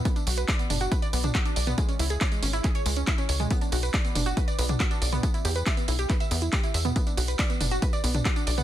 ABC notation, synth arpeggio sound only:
X:1
M:4/4
L:1/16
Q:1/4=139
K:Bm
V:1 name="Synth arpeggio sound"
B, D F B d B, D F B d B, D F D d B, | ^G, C E ^G c G, C E G c G, C E C c G, | B, D F B d B, D F B d B, D F D d B, | B, E G B e B, E G B e B, E G E e B, |
B, D F B d B, D F B d B, D F D d B, |]